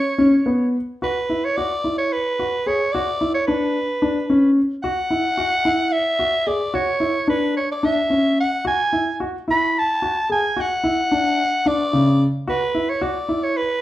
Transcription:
Already playing: soprano saxophone C#5
0.18 grand piano C#4
0.46 grand piano B3
1.02 grand piano F#4, soprano saxophone B4
1.30 grand piano E4
1.45 soprano saxophone C#5
1.57 grand piano F#4, soprano saxophone D5
1.84 grand piano E4
1.98 soprano saxophone C#5
2.13 soprano saxophone B4
2.39 grand piano F#4
2.66 grand piano G#4, soprano saxophone C#5
2.92 grand piano F#4, soprano saxophone D5
3.21 grand piano E4
3.34 soprano saxophone C#5
3.47 grand piano D4, soprano saxophone B4
4.02 grand piano D4
4.30 grand piano C#4
4.83 grand piano F#4, soprano saxophone F#5
5.11 grand piano E4
5.38 grand piano F#4
5.65 grand piano E4
5.92 soprano saxophone E5
6.19 grand piano F#4
6.47 grand piano G#4, soprano saxophone D5
6.74 grand piano F#4, soprano saxophone C#5
7.00 grand piano E4
7.28 grand piano D4, soprano saxophone B4
7.57 soprano saxophone C#5
7.72 soprano saxophone D5
7.83 grand piano D4, soprano saxophone E5
8.10 grand piano C#4
8.40 soprano saxophone F#5
8.65 grand piano F#4, soprano saxophone G#5
8.93 grand piano E4
9.20 grand piano F#4
9.48 grand piano E4, soprano saxophone B5
9.79 soprano saxophone A5
10.02 grand piano F#4
10.30 grand piano G#4, soprano saxophone G#5
10.57 grand piano F#4, soprano saxophone F#5
10.84 grand piano E4
11.12 grand piano D4
11.66 grand piano D4, soprano saxophone D5
11.93 grand piano C#3
12.47 grand piano F#4, soprano saxophone B4
12.75 grand piano E4
12.89 soprano saxophone C#5
13.01 grand piano F#4, soprano saxophone D5
13.29 grand piano E4
13.43 soprano saxophone C#5
13.57 soprano saxophone B4

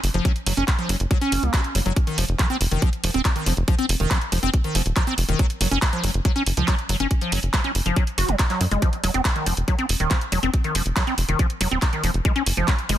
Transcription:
0.04 analog synth bass F#1, open hi-hat
0.14 analog synth bass F#1, acid bass F3, closed hi-hat
0.25 acid bass F#3, kick, closed hi-hat
0.36 closed hi-hat
0.46 analog synth bass F#1, acid bass F#3, open hi-hat
0.57 analog synth bass F#1, acid bass C#4, closed hi-hat
0.68 kick, clap, closed hi-hat
0.79 acid bass F3, closed hi-hat
0.89 analog synth bass F#1, acid bass F#3, open hi-hat
1.00 analog synth bass F#1, closed hi-hat
1.11 acid bass F#3, kick, closed hi-hat
1.21 acid bass C#4, closed hi-hat
1.32 analog synth bass F#1, open hi-hat
1.43 analog synth bass C#2, acid bass A#3, closed hi-hat
1.54 acid bass F#4, kick, clap, closed hi-hat
1.64 closed hi-hat
1.75 analog synth bass F#1, acid bass F#3, open hi-hat
1.86 analog synth bass F#1, acid bass F#3, closed hi-hat
1.96 kick, closed hi-hat
2.07 acid bass D#3, closed hi-hat
2.18 analog synth bass F1, acid bass F3, open hi-hat
2.29 analog synth bass F1, closed hi-hat
2.39 acid bass F3, kick, clap, closed hi-hat
2.50 acid bass C4, closed hi-hat
2.61 analog synth bass F1, open hi-hat
2.71 analog synth bass F1, acid bass D#3, closed hi-hat
2.82 acid bass F3, kick, closed hi-hat
2.93 closed hi-hat
3.04 analog synth bass F1, acid bass F3, open hi-hat
3.14 analog synth bass D#1, acid bass C4, closed hi-hat
3.25 kick, clap, closed hi-hat
3.36 acid bass D#3, closed hi-hat
3.46 analog synth bass F1, acid bass F3, open hi-hat
3.57 analog synth bass F1, closed hi-hat
3.68 acid bass F3, kick, closed hi-hat
3.79 acid bass C4, closed hi-hat
3.89 analog synth bass F1, open hi-hat
4.00 analog synth bass F1, acid bass D#3, closed hi-hat
4.11 acid bass F3, kick, clap, closed hi-hat
4.21 closed hi-hat
4.32 analog synth bass F1, acid bass F3, open hi-hat
4.43 analog synth bass F1, acid bass C4, closed hi-hat
4.54 kick, closed hi-hat
4.64 acid bass D#3, closed hi-hat
4.75 analog synth bass F1, acid bass F3, open hi-hat
4.86 analog synth bass D#1, closed hi-hat
4.96 acid bass F3, kick, clap, closed hi-hat
5.07 acid bass C4, closed hi-hat
5.18 analog synth bass F1, open hi-hat
5.29 analog synth bass F1, acid bass D#3, closed hi-hat
5.39 acid bass F#3, kick, closed hi-hat
5.50 closed hi-hat
5.61 analog synth bass F#1, acid bass F#3, open hi-hat
5.71 analog synth bass F#1, acid bass C#4, closed hi-hat
5.82 kick, clap, closed hi-hat
5.93 acid bass F3, closed hi-hat
6.04 analog synth bass F#1, acid bass F#3, open hi-hat
6.14 analog synth bass F#1, closed hi-hat
6.25 acid bass F#3, kick, closed hi-hat
6.36 acid bass C#4, closed hi-hat
6.46 analog synth bass F#1, open hi-hat
6.57 analog synth bass C#2, acid bass F3, closed hi-hat
6.68 acid bass F#3, kick, clap, closed hi-hat
6.79 closed hi-hat
6.89 analog synth bass F#1, acid bass F#3, open hi-hat
7.00 analog synth bass F#1, acid bass C#4, closed hi-hat
7.11 kick, closed hi-hat
7.21 acid bass F3, closed hi-hat
7.32 analog synth bass F#1, acid bass F#3, open hi-hat
7.43 analog synth bass F#1, closed hi-hat
7.54 acid bass F#3, kick, clap, closed hi-hat
7.64 acid bass C#4, closed hi-hat
7.75 analog synth bass F#1, open hi-hat
7.86 analog synth bass F#1, acid bass F3, closed hi-hat
7.96 acid bass F#3, kick, closed hi-hat
8.07 closed hi-hat
8.18 analog synth bass F#1, acid bass F#4, open hi-hat
8.29 analog synth bass F#1, acid bass F#3, closed hi-hat
8.39 kick, clap, closed hi-hat
8.50 acid bass F#3, clap, closed hi-hat
8.61 analog synth bass F#2, acid bass F#3, open hi-hat
8.71 analog synth bass F#1, acid bass G#3, closed hi-hat
8.82 acid bass F3, kick, closed hi-hat
8.93 closed hi-hat
9.04 analog synth bass F1, acid bass F#3, open hi-hat
9.14 analog synth bass F1, acid bass C4, closed hi-hat
9.25 kick, clap, closed hi-hat
9.36 acid bass D#3, closed hi-hat
9.46 analog synth bass F1, acid bass F3, open hi-hat
9.57 analog synth bass F1, closed hi-hat
9.68 acid bass F#3, kick, closed hi-hat
9.79 acid bass C4, closed hi-hat
9.89 analog synth bass F1, open hi-hat
10.00 analog synth bass D#1, acid bass D#3, closed hi-hat
10.11 acid bass F3, kick, clap, closed hi-hat
10.21 closed hi-hat
10.32 analog synth bass F1, acid bass F#3, open hi-hat
10.43 analog synth bass F1, acid bass C4, closed hi-hat
10.54 kick, closed hi-hat
10.64 acid bass D#3, closed hi-hat
10.75 analog synth bass F1, acid bass F3, open hi-hat
10.86 analog synth bass F1, closed hi-hat
10.96 acid bass F#3, kick, clap, closed hi-hat
11.07 acid bass C4, closed hi-hat
11.18 analog synth bass F1, open hi-hat
11.29 analog synth bass F1, acid bass D#3, closed hi-hat
11.39 acid bass F3, kick, closed hi-hat
11.50 closed hi-hat
11.61 analog synth bass F1, acid bass F#3, open hi-hat
11.71 analog synth bass D#1, acid bass C4, closed hi-hat
11.82 kick, clap, closed hi-hat
11.93 acid bass D#3, closed hi-hat
12.04 analog synth bass F1, acid bass F3, open hi-hat
12.14 analog synth bass F1, closed hi-hat
12.25 acid bass G#3, kick, closed hi-hat
12.36 acid bass C#4, closed hi-hat
12.46 analog synth bass F#1, open hi-hat
12.57 analog synth bass F#1, acid bass F3, closed hi-hat
12.68 acid bass F#3, kick, clap, closed hi-hat
12.79 closed hi-hat
12.89 analog synth bass F#1, acid bass G#3, open hi-hat

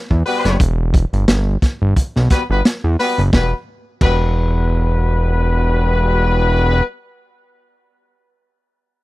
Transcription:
0.10 analog synth bass E2, kick
0.25 horn section G3 B3 F#4 B4, open hi-hat
0.45 analog synth bass F#1, snare, closed hi-hat
0.60 analog synth bass E1, kick, closed hi-hat
0.94 kick, closed hi-hat
1.13 analog synth bass G1, closed hi-hat
1.28 analog synth bass G1, snare, closed hi-hat
1.62 kick, snare, closed hi-hat
1.82 analog synth bass G1
1.96 analog synth bass B1, kick, closed hi-hat
2.16 analog synth bass B1, snare
2.30 horn section G3 B3 F#4 B4, kick, snare, closed hi-hat
2.50 analog synth bass G1, horn section G3 B3 F#4 B4
2.65 snare, closed hi-hat
2.84 analog synth bass E2
2.99 horn section G3 B3 F#4 B4, snare, open hi-hat
3.18 analog synth bass F#1, closed hi-hat
3.33 analog synth bass E1, horn section G3 B3 F#4 B4, kick, snare
4.01 analog synth bass E1, horn section G3 B3 F#4 B4, kick, crash

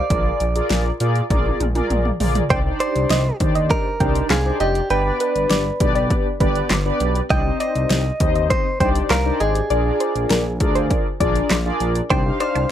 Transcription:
Already playing: clean electric guitar D5
0.10 analog synth bass A#1, analog polysynth F4 G#4 A#4 D5, kick, closed hi-hat
0.40 analog synth bass A#1, closed hi-hat
0.55 analog polysynth F4 G#4 A#4 D5, closed hi-hat
0.70 analog synth bass A#1, snare, closed hi-hat
1.00 analog synth bass A#2, analog polysynth F4 G#4 A#4 D5, closed hi-hat
1.15 closed hi-hat
1.30 analog synth bass A#1, analog polysynth F4 G#4 A#4 D5, kick, closed hi-hat, high tom
1.45 high tom
1.60 analog synth bass A#1, closed hi-hat, mid tom
1.75 analog polysynth F4 G#4 A#4 D5, closed hi-hat, mid tom
1.90 analog synth bass A#1, closed hi-hat, mid tom
2.05 mid tom
2.20 analog synth bass A#1, analog polysynth F4 G#4 A#4 D5, floor tom, open hi-hat
2.35 closed hi-hat, floor tom
2.50 analog synth bass C2, analog polysynth D4 D#4 G4 C5 D5, clean electric guitar C5, synth pluck G5, kick, closed hi-hat
2.65 analog polysynth D4 D#4 G4 C5 D5
2.80 clean electric guitar C5, synth pluck D5, closed hi-hat
2.95 analog synth bass C2, closed hi-hat
3.10 analog synth bass C2, synth pluck D#5, snare, closed hi-hat
3.40 analog synth bass D#2, analog polysynth D4 D#4 G4 C5 D5, kick, closed hi-hat
3.55 synth pluck D#5, closed hi-hat
3.70 clean electric guitar A#4, kick, closed hi-hat
4.00 analog synth bass C2, analog polysynth D4 D#4 G4 C5 D5, synth pluck G5, kick, closed hi-hat
4.15 closed hi-hat
4.30 analog synth bass C2, clean electric guitar G#4, synth pluck F5, snare, clap, closed hi-hat
4.45 analog polysynth D4 D#4 G4 C5 D5
4.60 analog synth bass F1, clean electric guitar G4, synth pluck D#5, closed hi-hat
4.75 closed hi-hat
4.90 analog synth bass G1, analog polysynth B3 D4 G4 B4 D5, clean electric guitar B4, synth pluck G5, closed hi-hat
5.05 analog polysynth B3 D4 G4 B4 D5
5.20 synth pluck B4, closed hi-hat
5.35 analog synth bass G1, closed hi-hat
5.50 analog synth bass G1, synth pluck D5, snare, closed hi-hat
5.80 analog synth bass B1, analog polysynth B3 D4 G4 B4 D5, kick, closed hi-hat
5.95 synth pluck D5, closed hi-hat
6.10 kick, closed hi-hat
6.40 analog synth bass G1, analog polysynth B3 D4 G4 B4 D5, synth pluck B4, kick, closed hi-hat
6.55 closed hi-hat
6.70 analog synth bass G1, snare, clap, closed hi-hat
6.85 analog polysynth B3 D4 G4 B4 D5
7.00 analog synth bass B1, closed hi-hat
7.15 closed hi-hat
7.30 analog synth bass C2, analog polysynth D4 D#4 G4 C5 D5, clean electric guitar D#5, synth pluck G5, kick, closed hi-hat
7.45 analog polysynth C4 D#4 G4 C5
7.60 synth pluck D5, clean electric guitar D#5, closed hi-hat
7.75 analog synth bass C2, closed hi-hat
7.90 analog synth bass C2, synth pluck D#5, snare, closed hi-hat
8.20 analog synth bass D#2, analog polysynth C4 D#4 G4 C5 D#5, kick, closed hi-hat
8.35 synth pluck D#5, closed hi-hat
8.50 clean electric guitar C5, kick, closed hi-hat
8.80 analog synth bass C2, analog polysynth D4 D#4 G4 C5 D5, clean electric guitar C5, synth pluck G5, kick, closed hi-hat
8.95 closed hi-hat
9.10 analog synth bass C2, clean electric guitar A#4, synth pluck F5, snare, clap, closed hi-hat
9.25 analog polysynth D4 D#4 G4 C5 D5
9.40 analog synth bass G#1, clean electric guitar G#4, synth pluck D#5, closed hi-hat
9.55 closed hi-hat
9.70 analog synth bass A#1, analog polysynth D4 F4 G#4 A#4 D5, synth pluck D5, closed hi-hat
9.85 analog polysynth D4 F4 G#4 A#4 D5
10.00 synth pluck C5, closed hi-hat
10.15 analog synth bass A#1, closed hi-hat
10.30 analog synth bass A#1, synth pluck A#4, snare, closed hi-hat
10.60 analog synth bass D2, analog polysynth D4 F4 G#4 A#4 D5, kick, closed hi-hat
10.75 synth pluck C5, closed hi-hat
10.90 kick, closed hi-hat
11.20 analog synth bass A#1, analog polysynth D4 F4 G#4 A#4 D5, synth pluck D5, kick, closed hi-hat
11.36 closed hi-hat
11.50 analog synth bass A#1, snare, clap, closed hi-hat
11.65 analog polysynth D4 F4 G#4 A#4 D5
11.80 analog synth bass A#1, closed hi-hat
11.95 closed hi-hat
12.10 analog synth bass C2, analog polysynth D4 D#4 G4 C5 D5, synth arpeggio sound D4, clean electric guitar C5, synth pluck G5, kick, closed hi-hat
12.25 analog polysynth D4 D#4 G4 C5 F5
12.40 synth arpeggio sound D#4, clean electric guitar C5, synth pluck D5, closed hi-hat
12.55 analog synth bass C2, synth arpeggio sound D4, closed hi-hat

